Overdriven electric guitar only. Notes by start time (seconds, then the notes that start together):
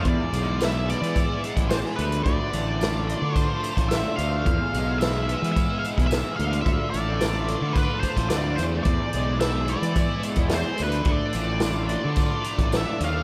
0.06 E2
0.33 G#3
0.60 E4
0.88 B3
1.14 E4
1.43 G#3
1.69 E3
1.96 D3
2.26 D3
2.53 A3
2.81 F4
3.08 D4
3.36 F4
3.63 A3
3.92 D3
4.20 A3
4.47 E2
4.75 G#3
5.02 E4
5.29 B3
5.57 E4
5.83 G#3
6.10 E3
6.40 D3
6.66 D3
6.93 A3
7.21 F4
7.49 D4
7.76 F4
8.04 A3
8.31 D3
8.59 A3
8.87 E2
9.15 G#3
9.41 E4
9.69 B3
9.96 E4
10.23 G#3
10.50 E3
10.79 D3
11.06 D3
11.35 A3
11.62 F4
11.91 D4
12.19 F4
12.47 A3
12.76 D3
13.03 A3